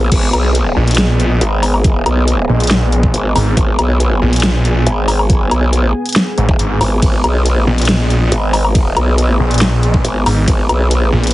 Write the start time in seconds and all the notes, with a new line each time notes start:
Already playing: A#1 B3 G#4 F#5
0.12 G#1 D#5, kick, closed hi-hat, crash
0.33 B1, closed hi-hat, low woodblock
0.55 closed hi-hat
0.76 A#1
0.88 closed hi-hat
0.91 closed hi-hat
0.95 snare, closed hi-hat
0.98 closed hi-hat
1.20 closed hi-hat
1.41 G#1, closed hi-hat
1.63 open hi-hat, low woodblock
1.74 low woodblock
1.84 kick, closed hi-hat
2.06 B1, closed hi-hat, low woodblock
2.28 closed hi-hat
2.49 A#1
2.60 closed hi-hat
2.64 closed hi-hat
2.67 snare, closed hi-hat
2.71 closed hi-hat
2.92 closed hi-hat
3.03 kick
3.14 G#1, closed hi-hat
3.35 G#1, open hi-hat, low woodblock
3.57 G#1 G#5, kick, closed hi-hat
3.79 B1, closed hi-hat, low woodblock
4.00 closed hi-hat
4.22 A#1
4.33 closed hi-hat
4.36 closed hi-hat
4.40 snare, closed hi-hat
4.65 closed hi-hat
4.87 G#1, closed hi-hat
5.08 open hi-hat, low woodblock
5.19 low woodblock
5.30 G1, kick, closed hi-hat
5.51 B1, closed hi-hat, low woodblock
5.73 closed hi-hat
6.06 closed hi-hat
6.09 closed hi-hat
6.13 snare, closed hi-hat
6.16 closed hi-hat
6.38 G#1, closed hi-hat
6.49 D#1, kick
6.59 G#1, closed hi-hat
6.81 G#1, open hi-hat, low woodblock
7.02 G#1 D#5, kick, closed hi-hat, ride
7.24 B1, closed hi-hat, low woodblock
7.46 closed hi-hat, ride
7.67 A#1
7.78 closed hi-hat
7.82 closed hi-hat
7.85 snare, closed hi-hat
7.89 closed hi-hat, ride
8.10 closed hi-hat
8.32 G#1, closed hi-hat, ride
8.53 open hi-hat, low woodblock
8.64 low woodblock
8.75 kick, closed hi-hat, ride
8.97 B1, closed hi-hat, low woodblock
9.18 closed hi-hat, ride
9.40 A#1
9.51 closed hi-hat
9.54 closed hi-hat
9.58 snare, closed hi-hat
9.61 closed hi-hat, ride
9.83 closed hi-hat
9.94 kick
10.04 G#1, closed hi-hat, ride
10.26 G#1, open hi-hat, low woodblock
10.48 G#1 B4, kick, closed hi-hat, ride
10.69 B1, closed hi-hat, low woodblock
10.91 closed hi-hat, ride
11.12 A#1
11.24 closed hi-hat
11.27 closed hi-hat
11.31 closed hi-hat